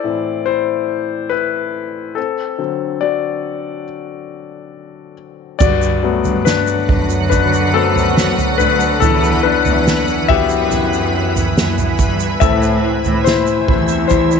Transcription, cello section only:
5.61 G2
6.25 G2
6.89 F#2
8.59 D2
9.02 E2
9.66 E2
10.29 F#2
11.57 F#2
11.99 G2
12.41 A2
13.05 A2
13.68 E2

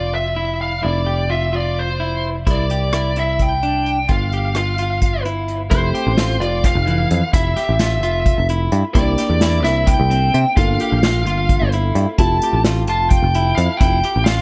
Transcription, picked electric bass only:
Already playing: F1
0.84 F1
2.47 C2
4.10 G1
5.72 F1
6.07 A1
6.41 F1
6.75 F1
7.11 F2
7.34 F1
7.69 A1
8.02 F1
8.38 F1
8.72 G2
8.95 C2
9.30 E2
9.65 C2
10.00 C2
10.34 C3
10.57 G1
10.92 A#1
11.27 G1
11.62 G1
11.95 G2
12.19 F1
12.53 A1
12.88 F1
13.22 F1
13.58 F2
13.81 F1
14.16 A1

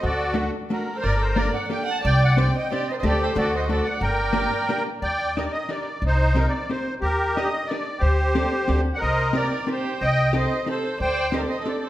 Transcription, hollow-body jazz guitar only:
0.34 A3 D4 F#4 A4
0.70 A3 D4 F#4 A4
1.36 A#3 D4 G4 A4
1.70 A#3 D4 G4 A4
2.37 C4 D4 G4 C5
2.72 C4 D4 G4 C5
3.04 A3 D4 G4 A4
3.35 A3 D4 F#4 A4
3.69 A3 D4 F#4 A4
4.33 A#3 D4 G4 A#4
4.69 A#3 D4 G4 A#4
5.37 D4 D#4 G4 A#4
5.69 D4 D#4 G4 A#4
6.35 C4 D#4 G4 A#4
6.70 C4 D#4 G4 A#4
7.37 D4 D#4 G4 A#4
7.71 D4 D#4 G4 A#4
8.35 C4 D4 G4 A4
8.68 C4 D4 F#4 A4
9.33 C4 D#4 G4 A#4
9.67 C4 D#4 G4 A#4
10.33 C4 D#4 G4 A4
10.66 C4 D#4 G4 A4
11.32 C4 D4 G4 A4
11.65 C4 D4 G4 A4

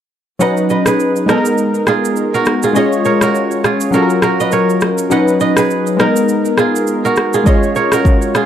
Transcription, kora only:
0.41 D#5 F#5
0.70 B4 D#5
0.87 G#4 B4
1.29 D#4 A#4
1.88 F4 G#4
2.34 F#4 A#4
2.64 F4 G#4
2.76 G#4 D#5
3.05 A#4 C#5
3.22 F#4 A#4
3.64 F4 G#4
3.94 F#4 A#4
4.23 F#4 A#4
4.40 B4 D#5
4.53 A#4 C#5
5.11 D#5 F#5
5.41 B4 D#5
5.58 G#4 B4
6.00 D#4 A#4
6.58 F4 G#4
7.05 F#4 A#4
7.34 F4 G#4
7.47 G#4 D#5
7.76 A#4 C#5
7.93 F#4 A#4
8.35 F4 G#4

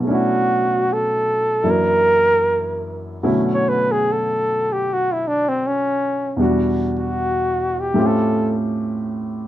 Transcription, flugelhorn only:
0.14 F#4
0.93 A4
1.70 A#4
3.54 C#5
3.69 B4
3.92 G#4
4.12 A4
4.73 G4
4.94 F#4
5.12 E4
5.28 D4
5.49 C4
5.67 C#4
6.99 F#4
7.80 G4
8.06 A4

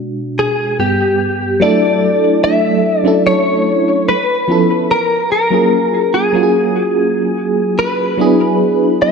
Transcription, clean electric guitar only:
0.39 G#4
0.80 G4
1.62 D5
2.44 E5
3.01 D5
3.27 C#5
4.09 B4
4.91 A#4
5.32 A#4
6.14 G#4
7.79 B4
9.02 E5

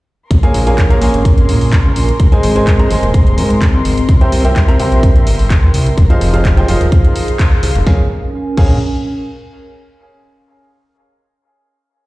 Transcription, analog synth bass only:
0.31 A#1
0.54 A#1
1.02 A#1
1.14 G#1
1.49 A#2
1.85 C#2
1.96 A#1
2.20 G#1
2.43 G#1
2.91 G#1
3.03 D#1
3.38 G#2
3.74 C2
3.85 G#1
4.09 C2
4.32 C2
4.79 C2
4.92 A#1
5.27 G1
5.63 E2
5.74 C2
5.98 F1
6.21 F1
6.68 F1
6.81 D#1
7.63 C2
7.75 F1
7.87 A#1
8.57 A#1

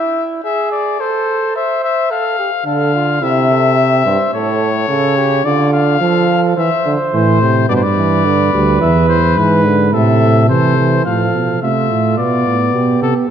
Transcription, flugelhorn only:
Already playing: E4
0.44 G#4
0.99 A4
1.56 C5
2.11 A4
2.39 G4
2.66 A4
2.94 F4
3.21 E4
3.49 A4
3.77 G4
4.05 C5
4.34 A4
4.89 A4
5.17 G4
5.45 F4
6.02 A4
6.29 A4
6.57 C5
7.69 B4
9.93 A4
10.49 A4
11.06 A4
11.63 F4
12.75 G4

